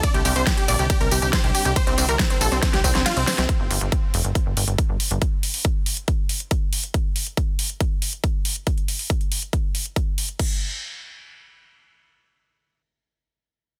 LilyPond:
<<
  \new Staff \with { instrumentName = "Synth pluck" } { \time 4/4 \key c \dorian \tempo 4 = 139 d'''16 g''16 g''16 c'''16 g''16 g''16 d'''16 g''16 g''16 bes''16 g''16 g''16 c'''16 g''16 g''16 g''16 | c'''16 c''16 c''16 bes''16 c''16 c''16 a''16 c''16 c''16 g''16 c''16 c''16 f''16 c''16 c''16 c''16 | r1 | r1 |
r1 | r1 | r1 | r1 | }
  \new Staff \with { instrumentName = "Supersaw synth" } { \time 4/4 \key c \dorian d''16 g'16 g'16 c''16 g'16 g'16 d''16 g'16 g'16 bes'16 g'16 g'16 c''16 g'16 g'16 g'16 | c''16 c'16 c'16 bes'16 c'16 c'16 a'16 c'16 c'16 g'16 c'16 c'16 f'16 c'16 c'16 c'16 | r1 | r1 |
r1 | r1 | r1 | r1 | }
  \new Staff \with { instrumentName = "Analog synth pad" } { \clef bass \time 4/4 \key c \dorian <c d g d' g'>1~ | <c d g d' g'>1 | r1 | r1 |
r1 | r1 | r1 | r1 | }
  \new Staff \with { instrumentName = "Analog synth bass" } { \clef bass \time 4/4 \key c \dorian r16 c,16 c,16 c,16 r8 bes,,16 c,16 r16 c,16 c,16 c,16 r16 c,16 r16 c,16 | r16 c,16 c,16 c,16 r8 bes,,16 c,16 r16 c,16 c,16 c,16 r16 c,16 r16 c,16 | r16 g,,16 g,,16 g,,16 r8 f,,16 g,,16 r16 g,,16 g,,16 g,,16 r16 g,,16 r16 g,,16 | r1 |
r1 | r1 | r1 | r1 | }
  \new DrumStaff \with { instrumentName = "Drums" } \drummode { \time 4/4 <hh bd cymr tamb>16 <hh tamb>16 <hho tamb>16 <hh tamb>16 <hh bd cymr sn tamb>16 <hh tamb>16 <hho tamb>16 <hh tamb>16 <hh bd cymr tamb>16 <hh tamb>16 <hho tamb>16 <hh tamb>16 <hh bd cymr sn tamb>16 <hh tamb>16 <hho tamb>16 <hh tamb>16 | <hh bd cymr tamb>16 <hh tamb>16 <hho tamb>16 <hh tamb>16 <hh bd cymr sn tamb>16 <hh tamb>16 <hho tamb>16 <hh tamb>16 <hh bd cymr sn tamb>16 <hh sn tamb>16 <hho bd tamb>16 <hh sn tamb>16 <hh cymr sn tamb>16 <hh tamb>16 <hho sn tamb>16 <hh sn tamb>16 | <hh bd>8 hho16 hh16 <hh bd>8 hho16 hh16 <hh bd>8 hho16 hh16 <hh bd>8 hho16 hh16 | <hh bd>8 hho16 hho16 <hh bd>8 hho16 hh16 <hh bd>8 hho16 hh16 <hh bd>8 hho16 hh16 |
<hh bd>8 hho16 hh16 <hh bd>8 hho16 hh16 <hh bd>8 hho16 hh16 <hh bd>8 hho16 hh16 | <hh bd>16 hh16 hho16 hho16 <hh bd>16 hh16 hho16 hh16 <hh bd>8 hho16 hh16 <hh bd>8 hho16 hh16 | <cymc bd>4 r4 r4 r4 | r4 r4 r4 r4 | }
>>